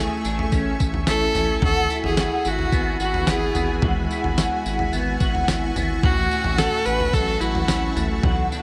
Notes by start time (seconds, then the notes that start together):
Already playing: A3 C#4 E4 G#4 E5 G#5 C#6
0.25 A1 D4, tambourine
0.39 E4, floor tom
0.52 A1 C#4, kick, tambourine
0.80 A1, kick, tambourine
0.94 floor tom
1.07 A1 E4 A4, snare, tambourine
1.35 A1 C#4, floor tom, tambourine
1.62 G#1 F#4 A4 G#5 B5, kick, floor tom
1.90 E4, tambourine
2.04 G#1 G#4, floor tom
2.17 F#4, snare, tambourine
2.45 G#1 E4 F#4, tambourine
2.59 floor tom
2.72 G#1 B3, kick, tambourine
3.00 G#1 F#4, tambourine
3.14 floor tom
3.27 G#1 E4 G#4, snare, tambourine
3.55 G#1 B3, floor tom, tambourine
3.82 G#1 G#3 F#4 C#6, kick, floor tom
4.10 E4, tambourine
4.24 G#1, floor tom
4.37 F#4, snare, tambourine
4.66 G#1 E4, tambourine
4.79 floor tom
4.93 G#1 B3, tambourine
5.20 G#1 F#4, kick, tambourine
5.35 floor tom
5.48 G#1 E4, snare, tambourine
5.76 G#1 B3, floor tom, tambourine
6.03 A1 A2 F#4 E5 A5, kick, floor tom
6.31 C#4, tambourine
6.44 A1, floor tom
6.58 F#4 A4, snare, tambourine
6.86 A1 C#4 B4, tambourine
7.00 floor tom
7.13 A1 F#3 A4, kick, tambourine
7.40 A1 E4 F#4, tambourine
7.55 floor tom
7.68 A1 C#4, snare, tambourine
7.96 A1 A3, floor tom, tambourine
8.23 B1 B2 F#4 D5 A5 B5, kick, floor tom
8.52 D4, tambourine